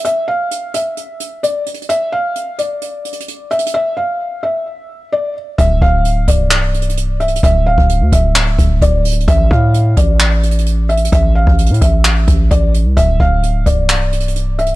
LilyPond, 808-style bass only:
\new Staff \with { instrumentName = "808-style bass" } { \clef bass \time 4/4 \key d \minor \tempo 4 = 130 r1 | r1 | r1 | d,,8 d,,4 c,,2~ c,,8 |
d,,8. d,,8 d,16 d,,4 d,,8 d,,4 | a,,8 a,4 a,,2~ a,,8 | a,,8. a,,8 a,16 a,,4 a,,8 a,,8. c,16 | d,,8 d,,4 c,,2~ c,,8 | }